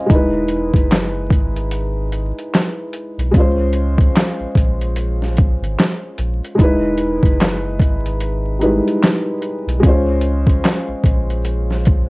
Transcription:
0.00 0.06 G#3 medium
0.00 0.12 C#4 soft
0.00 0.10 F4 soft
0.00 0.11 C5 soft
0.00 0.11 D#5 medium
0.00 0.12 F5 medium
0.00 0.12 G#5 medium
0.00 0.11 A#5 medium
0.06 0.71 E1 loud
0.06 3.28 G#3 medium
0.06 3.30 D#4 medium
0.06 kick loud
0.10 3.31 E4 medium
0.10 closed hi-hat medium
0.15 3.33 B4 medium
0.48 closed hi-hat medium
0.74 1.32 F#1 medium
0.74 kick medium
0.74 closed hi-hat soft
0.91 snare loud
0.91 clap medium
0.91 closed hi-hat medium
1.31 2.32 G#1 medium
1.31 kick medium
1.31 closed hi-hat medium
1.57 closed hi-hat soft
1.71 closed hi-hat medium
2.12 closed hi-hat medium
2.39 closed hi-hat soft
2.54 snare loud
2.54 clap medium
2.54 closed hi-hat medium
2.93 closed hi-hat medium
3.18 3.33 B1 medium
3.18 closed hi-hat medium
3.32 4.11 C#2 loud
3.32 6.53 G#3 medium
3.32 6.54 C#4 medium
3.32 kick loud
3.32 closed hi-hat medium
3.37 6.56 F4 medium
3.37 6.57 C5 medium
3.73 closed hi-hat medium
3.98 kick medium
3.98 closed hi-hat soft
4.16 snare loud
4.16 clap loud
4.16 closed hi-hat medium
4.40 4.46 A#1 soft
4.55 5.57 A#1 loud
4.55 kick medium
4.55 closed hi-hat medium
4.81 closed hi-hat soft
4.96 closed hi-hat medium
5.22 snare soft
5.37 kick medium
5.37 closed hi-hat medium
5.61 5.76 G#1 medium
5.61 closed hi-hat medium
5.79 snare loud
5.79 clap medium
5.79 closed hi-hat medium
6.18 6.41 A#1 medium
6.18 closed hi-hat medium
6.44 closed hi-hat medium
6.55 8.55 G#3 medium
6.55 8.57 D#4 medium
6.59 7.20 E1 loud
6.59 8.58 E4 medium
6.59 kick loud
6.59 closed hi-hat medium
6.64 8.60 B4 medium
6.98 closed hi-hat medium
7.23 7.81 F#1 loud
7.23 kick medium
7.23 closed hi-hat soft
7.41 snare loud
7.41 clap loud
7.41 closed hi-hat medium
7.80 8.81 G#1 loud
7.80 kick medium
7.80 closed hi-hat medium
8.06 closed hi-hat soft
8.21 closed hi-hat medium
8.59 8.68 G3 soft
8.59 9.82 D#4 soft
8.59 9.83 E4 medium
8.59 closed hi-hat medium
8.63 9.78 G#3 medium
8.63 9.84 B4 medium
8.88 closed hi-hat soft
9.03 snare loud
9.03 clap medium
9.03 closed hi-hat medium
9.42 closed hi-hat medium
9.67 9.82 B1 medium
9.67 closed hi-hat medium
9.80 10.60 C#2 loud
9.80 12.09 G#3 medium
9.80 12.09 C#4 medium
9.80 kick loud
9.80 closed hi-hat medium
9.85 12.09 F4 medium
9.85 12.09 C5 medium
10.21 closed hi-hat medium
10.47 kick medium
10.47 closed hi-hat soft
10.64 snare loud
10.64 clap loud
10.64 closed hi-hat medium
10.88 10.95 A#1 soft
11.04 12.05 A#1 loud
11.04 kick medium
11.04 closed hi-hat medium
11.30 closed hi-hat soft
11.45 closed hi-hat medium
11.71 snare soft
11.85 kick medium
11.85 closed hi-hat medium

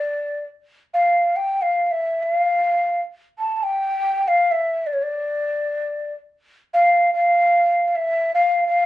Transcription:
0.00 0.45 D5 medium
0.94 1.38 F5 medium
1.36 1.63 G5 medium
1.62 1.86 F5 medium
1.86 1.93 F5 medium
1.91 2.24 E5 medium
2.23 3.00 F5 medium
3.39 3.56 A5 medium
3.56 3.65 A5 medium
3.63 4.29 G5 loud
4.28 4.53 F5 medium
4.51 4.88 E5 medium
4.86 4.95 D5 medium
4.93 5.04 C#5 medium
5.03 6.14 D5 medium
6.74 7.11 F5 medium
7.14 7.88 F5 medium
7.88 7.97 F5 medium
7.96 8.32 E5 medium
8.34 8.65 F5 medium
8.67 8.86 F5 medium

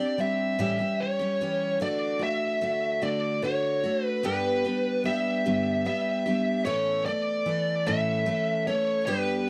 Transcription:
0.00 0.18 C4 soft
0.00 0.18 D4 soft
0.00 0.19 G4 soft
0.00 0.55 D5 medium
0.18 0.59 G3 medium
0.18 0.60 C4 medium
0.18 0.59 D4 medium
0.18 0.58 G4 medium
0.18 0.58 E5 medium
0.59 0.80 A2 medium
0.59 0.80 E3 medium
0.59 0.80 G3 medium
0.59 0.79 C#4 medium
0.59 0.78 G4 medium
0.59 1.02 E5 medium
0.79 1.20 G3 soft
0.79 1.20 C#4 soft
0.79 1.18 G4 soft
1.00 1.77 C#5 medium
1.20 1.40 G3 soft
1.20 1.41 C#4 soft
1.20 1.40 G4 medium
1.41 1.79 E3 medium
1.41 1.80 G3 medium
1.41 1.81 C#4 medium
1.41 1.81 G4 medium
1.80 2.21 D3 medium
1.80 2.21 A3 medium
1.80 2.20 D4 medium
1.80 2.18 F#4 medium
1.80 2.23 D5 loud
2.19 2.60 A3 soft
2.19 2.61 D4 soft
2.19 2.61 F#4 soft
2.23 3.03 E5 loud
2.61 3.02 D3 medium
2.61 3.01 A3 medium
2.61 3.01 D4 medium
2.61 3.00 F#4 medium
3.02 3.41 D3 soft
3.02 3.42 A3 medium
3.02 3.43 D4 medium
3.02 3.43 F#4 medium
3.02 3.41 D5 medium
3.42 3.83 D3 medium
3.42 3.84 A3 soft
3.42 3.84 D4 soft
3.42 3.82 F#4 medium
3.42 4.04 C#5 medium
3.84 4.24 A3 soft
3.84 4.23 D4 soft
3.84 4.24 F#4 medium
4.04 4.26 B4 medium
4.23 4.64 G2 medium
4.23 4.64 D3 medium
4.23 4.64 G3 medium
4.23 4.65 B3 medium
4.23 4.64 D4 medium
4.23 4.63 G4 medium
4.23 5.02 B4 medium
4.65 5.03 G3 soft
4.65 5.04 B3 soft
4.65 5.05 D4 soft
4.65 5.05 G4 medium
5.04 5.45 G3 medium
5.04 5.45 B3 medium
5.04 5.45 D4 medium
5.04 5.44 G4 medium
5.04 5.86 E5 medium
5.46 5.87 G2 soft
5.46 5.86 D3 medium
5.46 5.84 G3 medium
5.46 5.85 B3 medium
5.46 5.85 D4 medium
5.46 5.86 G4 medium
5.85 6.26 G3 medium
5.85 6.26 B3 medium
5.85 6.26 D4 medium
5.85 6.24 G4 medium
5.85 6.65 E5 medium
6.26 6.66 G3 soft
6.26 6.66 B3 soft
6.26 6.66 D4 soft
6.26 6.66 G4 medium
6.65 7.06 A2 medium
6.65 7.07 E3 medium
6.65 7.07 A3 medium
6.65 7.07 C#4 medium
6.65 7.05 A4 medium
6.65 7.05 C#5 medium
7.06 7.46 A3 soft
7.06 7.46 A4 medium
7.06 7.87 D5 medium
7.46 7.87 E3 medium
7.46 7.87 A3 medium
7.46 7.85 A4 medium
7.87 8.28 A2 medium
7.87 8.25 E3 medium
7.87 8.25 A3 medium
7.87 8.26 C#4 medium
7.87 8.27 A4 medium
7.87 8.67 E5 medium
8.26 8.67 E3 medium
8.26 8.67 A3 medium
8.26 8.67 C#4 medium
8.26 8.66 A4 soft
8.67 9.07 A3 soft
8.67 9.07 C#4 medium
8.67 9.08 A4 medium
8.67 9.09 C#5 medium
9.06 9.48 G2 medium
9.06 9.48 D3 medium
9.06 9.48 G3 medium
9.06 9.48 B3 medium
9.06 9.47 D4 medium
9.06 9.46 G4 medium
9.06 9.49 B4 medium

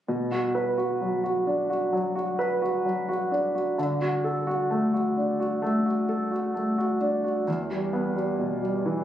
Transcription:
0.08 3.74 B2 soft
0.32 0.76 F#4 soft
0.55 2.36 B4 soft
0.78 1.22 F#4 soft
1.01 1.91 F#3 soft
1.24 1.68 F#4 soft
1.47 3.28 D4 soft
1.70 2.14 F#4 soft
1.92 2.83 F#3 soft
2.15 2.61 F#4 soft
2.39 3.74 B4 soft
2.62 3.07 F#4 soft
2.85 3.75 F#3 soft
3.09 3.53 F#4 soft
3.32 3.77 D4 soft
3.55 3.77 F#4 soft
3.78 7.43 D3 soft
4.01 4.45 F#4 soft
4.24 6.05 A4 soft
4.47 4.92 F#4 soft
4.70 5.61 A3 soft
4.94 5.38 F#4 soft
5.17 6.97 D4 soft
5.40 5.84 F#4 soft
5.62 6.53 A3 soft
5.86 6.30 F#4 soft
6.09 7.43 A4 soft
6.31 6.76 F#4 soft
6.54 7.44 A3 soft
6.78 7.23 F#4 soft
7.01 7.46 D4 soft
7.24 7.47 F#4 soft
7.48 9.04 E2 soft
7.70 8.14 G3 soft
7.93 9.04 B3 soft
8.16 8.60 G3 soft
8.39 9.04 B2 soft
8.62 9.04 G3 soft
8.86 9.04 E3 soft

